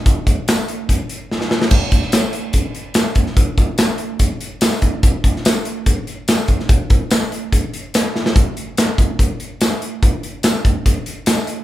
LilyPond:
\new DrumStaff \with { instrumentName = "Drums" } \drummode { \time 4/4 \tempo 4 = 145 <hh bd>8 <hh bd>8 <hh sn tamb>8 hh8 <hh bd>8 hh8 sn16 sn16 sn16 sn16 | <cymc bd>8 <hh bd>16 sn16 <hh sn tamb>8 hh8 <hh bd>8 hh8 <hh sn tamb>8 <hh bd>16 sn16 | <hh bd>8 <hh bd>8 <hh sn tamb>8 hh8 <hh bd>8 hh8 <hh sn tamb>8 <hh bd>8 | <hh bd>8 <hh bd>16 sn16 <hh sn tamb>8 hh8 <hh bd>8 hh8 <hh sn tamb>8 <hh bd>16 sn16 |
<hh bd>8 <hh bd>8 <hh sn tamb>8 hh8 <hh bd>8 hh8 <hh sn tamb>8 sn16 sn16 | <hh bd>8 hh8 <hh sn tamb>8 <hh bd>8 <hh bd>8 hh8 <hh sn tamb>8 hh8 | <hh bd>8 hh8 <hh sn tamb>8 <hh bd>8 <hh bd>8 hh8 <hh sn tamb>8 hh8 | }